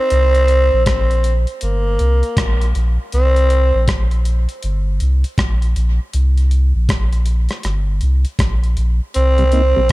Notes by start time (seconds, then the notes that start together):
Already playing: C4
0.10 C2, closed hi-hat
0.35 closed hi-hat
0.48 closed hi-hat
0.73 A#1
0.86 A#1 C4, kick, cross-stick, closed hi-hat
1.11 closed hi-hat
1.24 closed hi-hat
1.47 closed hi-hat
1.61 G1 A#3, closed hi-hat
1.99 C2, closed hi-hat
2.23 closed hi-hat
2.37 A#1, kick, cross-stick, closed hi-hat
2.62 closed hi-hat
2.75 A#1, closed hi-hat
3.12 C2 C4, closed hi-hat
3.36 closed hi-hat
3.50 closed hi-hat
3.75 A#1
3.88 A#1, kick, cross-stick, closed hi-hat
4.11 closed hi-hat
4.25 closed hi-hat
4.49 closed hi-hat
4.63 G1, closed hi-hat
5.00 C2, closed hi-hat
5.24 closed hi-hat
5.38 A#1, kick, cross-stick, closed hi-hat
5.62 closed hi-hat
5.76 A#1, closed hi-hat
6.13 C2, closed hi-hat
6.37 closed hi-hat
6.51 closed hi-hat
6.75 A#1
6.89 A#1, kick, cross-stick, closed hi-hat
7.13 closed hi-hat
7.26 closed hi-hat
7.49 cross-stick, closed hi-hat
7.63 G1, cross-stick, closed hi-hat
8.01 C2, closed hi-hat
8.25 closed hi-hat
8.39 A#1, kick, cross-stick, closed hi-hat
8.64 closed hi-hat
8.77 A#1, closed hi-hat
9.14 C2 C4, closed hi-hat
9.38 C3 G3, closed hi-hat
9.52 A#3 C4 D#4, closed hi-hat
9.76 A#1 C3 G3